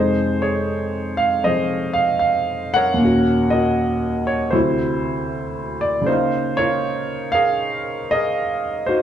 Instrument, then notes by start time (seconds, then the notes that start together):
grand piano
Already playing: F2 C3 G#3 D#4 G#4 C5
0.42 G#4 C#5
1.17 F5
1.44 C3 F3 G#4 C5 D#5
1.93 F5
2.19 F5
2.74 A#4 C#5 F#5
2.94 D#2 A#2
3.01 C#4 F#4
3.50 F#4 A#4 D#5
4.27 C#5
4.51 D2 C3 E4 F#4 C5
5.81 D5
6.01 C#3 A#3
6.06 D#4 F4 C5
6.13 F5
6.57 F4 A#4 C#5
7.32 G#4 A#4 F5
8.11 G#4 A#4 D#5
8.86 D#4 F#4 C5